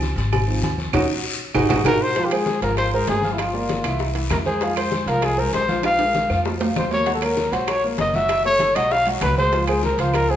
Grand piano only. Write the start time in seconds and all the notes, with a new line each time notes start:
0.48 F3 C4 D#4
0.93 C#4 D#4 F#4
1.54 D#4 F#4 G#4
1.69 D#4 F#4 G#4
1.85 D#4 F#4 G#4
2.16 F3 F4 F5
2.32 G#3 G#4 C5
2.62 F3 F4 F5
2.94 G#3 G#4 C5
3.24 F3 F4 F5
3.54 A#3 A#4 D5
3.84 E3 E4 E5
4.15 E3 E4 E5
4.46 G#3 G#4 C5
4.62 F3 F4 F5
4.77 G#3 G#4 C5
5.07 F3 F4 F5
5.38 G#3 G#4 C5
5.69 F3 F4 F5
6.00 G#3 G#4 A#4
6.30 F3 F4 F5
6.60 F3 F4 F5
6.91 A#3 A#4 C#5
7.06 F#3 F#4 F#5
7.22 A#3 A#4 C#5
7.52 F#3 F#4 F#5
7.84 A#3 A#4 C#5
8.15 F#3 F#4 F#5
8.45 A3 A4 C#5
8.76 F#3 F#4 F#5
9.07 F#3 F#4 F#5
9.38 G#3 G#4 C5
9.54 F3 F4 F5
9.68 G#3 G#4 C5
10.00 F3 F4 F5
10.30 G#3 G#4 C5